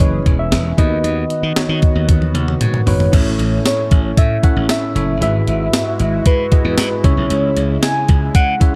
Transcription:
Already playing: analog synth pad E3 C#4 G#4, tine electric piano E3 C#4 E4 G#4 B4
0.00 slap bass F#1, soft synth lead C#5, kick, closed hi-hat
0.26 slap bass E1, kick, closed hi-hat
0.39 soft synth lead E5
0.51 slap bass E1, snare, closed hi-hat
0.77 slap bass D#2, tine electric piano D#3 B3 D#4 F#4 B4, analog synth pad D#3 B3 F#4, soft synth lead D#5, kick, closed hi-hat
1.04 slap bass D#2, soft synth lead D#5, closed hi-hat
1.30 closed hi-hat
1.43 slap bass D#3
1.56 tine electric piano B3 D#4 F#4 C#5, muted slap bass stroke, snare, closed hi-hat
1.69 slap bass D#3
1.82 kick, closed hi-hat
1.95 slap bass D#2
2.09 slap bass D#2, kick, closed hi-hat, high tom
2.22 high tom
2.34 slap bass D#2, closed hi-hat, mid tom
2.48 mid tom
2.60 slap bass G#2, closed hi-hat, mid tom
2.74 mid tom
2.86 slap bass G#1, tine electric piano B3 D#4 F#4 B4, soft synth lead C#5, floor tom, open hi-hat
3.00 floor tom
3.12 slap bass A1, tine electric piano A2 C#4 E4 A4 C#5 E5, analog synth pad A3 C#4 E4, kick, closed hi-hat, crash
3.39 slap bass A1, closed hi-hat
3.65 soft synth lead C#5, snare, closed hi-hat, tambourine
3.91 slap bass A1, kick, closed hi-hat
4.17 slap bass A2, soft synth lead E5, kick, closed hi-hat
4.43 tine electric piano C#4 E4 A4 C#5 E5, soft synth lead F#5, kick, closed hi-hat
4.56 slap bass A1
4.69 soft synth lead E5, snare, closed hi-hat, tambourine
4.95 slap bass F#1, tine electric piano C#4 E4 A4 C#5 E5, closed hi-hat
5.21 slap bass G#1, tine electric piano G#2 E4 F#4 G#4 B4 E5, analog synth pad G#3 F#4, soft synth lead E5, closed hi-hat
5.48 slap bass G#1, closed hi-hat
5.73 snare, closed hi-hat, tambourine
6.00 slap bass G#1, closed hi-hat
6.26 slap bass G#2, soft synth lead B4, kick, closed hi-hat
6.51 tine electric piano E4 F#4 G#4 B4 D#5, kick, closed hi-hat
6.65 slap bass E2
6.78 slap bass G#2, snare, closed hi-hat, tambourine
7.04 slap bass C#2, tine electric piano C#3 C#4 E4 G#4 C#5 E5, analog synth pad C#3 G#3, soft synth lead C#5, kick, closed hi-hat
7.17 slap bass B1
7.30 slap bass C#2, closed hi-hat
7.56 slap bass C#2, closed hi-hat
7.82 soft synth lead G#5, snare, closed hi-hat, tambourine
8.09 slap bass C#2, kick, closed hi-hat
8.35 slap bass C#3, soft synth lead F#5, kick, closed hi-hat
8.60 tine electric piano C#4 E4 G#4 C#5 E5, kick, closed hi-hat

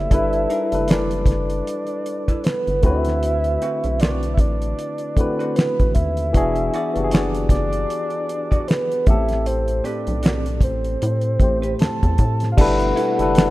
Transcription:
Already playing: tine electric piano A3 E4 G4 A4 C#5 D5, soft synth lead E5
0.10 analog synth bass G1, tine electric piano G3 D4 E4 A4, kick, closed hi-hat
0.14 tine electric piano B4
0.33 closed hi-hat
0.50 hollow-body jazz guitar D#4 G#4 A#4, closed hi-hat
0.65 hollow-body jazz guitar E4 A4 B4
0.71 analog synth bass F#1, tine electric piano G3 D4 E4 A4, closed hi-hat
0.75 tine electric piano B4
0.88 hollow-body jazz guitar E4 A4 B4, soft synth lead D5, finger snap, snare, closed hi-hat
1.11 closed hi-hat
1.26 analog synth bass F#1, soft synth lead D5, kick, closed hi-hat
1.30 snare
1.50 closed hi-hat
1.67 closed hi-hat
1.87 closed hi-hat
2.06 closed hi-hat
2.28 hollow-body jazz guitar E4 A4 B4, kick, closed hi-hat
2.44 soft synth lead B4, finger snap, snare, closed hi-hat
2.67 analog synth bass G1, closed hi-hat
2.82 analog synth bass D2, tine electric piano D3 A3 C4 E4 F#4, soft synth lead E5, kick, closed hi-hat
2.86 tine electric piano B4
3.05 snare, closed hi-hat
3.23 closed hi-hat
3.44 closed hi-hat
3.62 hollow-body jazz guitar C4 F#4 B4, closed hi-hat
3.84 analog synth bass B1, closed hi-hat
4.00 hollow-body jazz guitar C4 F#4 B4, soft synth lead D5, finger snap, snare, closed hi-hat
4.23 closed hi-hat
4.34 soft synth lead E5, kick
4.38 analog synth bass A1, soft synth lead D5, closed hi-hat
4.62 closed hi-hat
4.79 closed hi-hat
4.98 closed hi-hat
5.16 tine electric piano D3 A3 C4 E4 F#4, kick, closed hi-hat
5.21 tine electric piano B4
5.39 hollow-body jazz guitar C4 F#4 B4, closed hi-hat
5.56 soft synth lead B4, finger snap, snare, closed hi-hat
5.80 analog synth bass A1, kick, closed hi-hat
5.95 analog synth bass D#2, soft synth lead E5, kick, closed hi-hat
6.17 closed hi-hat
6.33 analog synth bass E1, tine electric piano E3 B3 D4 F#4, kick, closed hi-hat
6.37 tine electric piano G#4
6.56 closed hi-hat
6.74 hollow-body jazz guitar F#4 G#4 D5, closed hi-hat
6.94 analog synth bass F#1, tine electric piano E3 B3 D4 F#4 G4, closed hi-hat
7.04 tine electric piano G#4
7.11 hollow-body jazz guitar F#4 G#4 D5, soft synth lead D5, finger snap, snare, closed hi-hat
7.35 closed hi-hat
7.49 analog synth bass F#1, soft synth lead D5, kick, closed hi-hat
7.53 snare
7.73 closed hi-hat
7.90 closed hi-hat
8.10 closed hi-hat
8.29 closed hi-hat
8.51 hollow-body jazz guitar F#4 G#4 D5, kick, closed hi-hat
8.68 soft synth lead B4, finger snap, snare, closed hi-hat
8.92 closed hi-hat
9.06 analog synth bass A1, tine electric piano A2 A3 B3 G4, soft synth lead E5, kick, closed hi-hat
9.10 tine electric piano A4
9.15 tine electric piano C4
9.29 snare, closed hi-hat
9.46 soft synth lead C5, closed hi-hat
9.68 closed hi-hat
9.84 hollow-body jazz guitar C4 G4 B4, soft synth lead D5, closed hi-hat
10.07 analog synth bass B1, closed hi-hat
10.23 hollow-body jazz guitar C4 G4 B4, finger snap, snare, closed hi-hat
10.46 closed hi-hat
10.61 analog synth bass A1, soft synth lead C5, kick, closed hi-hat
10.85 closed hi-hat
11.02 analog synth bass A2, closed hi-hat
11.21 closed hi-hat
11.39 analog synth bass A1, tine electric piano A2 A3 C4 G4, kick, closed hi-hat
11.44 tine electric piano C5
11.62 hollow-body jazz guitar C4 G4 B4, closed hi-hat
11.79 analog synth bass E2, soft synth lead A5, finger snap, snare, closed hi-hat
12.03 analog synth bass E2, kick, closed hi-hat
12.18 analog synth bass A2, kick, closed hi-hat
12.40 snare, closed hi-hat
12.52 soft synth lead F5
12.57 analog synth bass G1, tonewheel organ B2 A3 E4, tine electric piano G3 D4 E4 A4, soft synth lead F#5, kick, crash
12.61 tine electric piano B4
12.79 closed hi-hat
12.96 hollow-body jazz guitar E4 A4 B4, closed hi-hat
13.18 analog synth bass F#1, tine electric piano G3 D4 E4 A4, closed hi-hat
13.22 tine electric piano B4
13.35 finger snap, snare, closed hi-hat

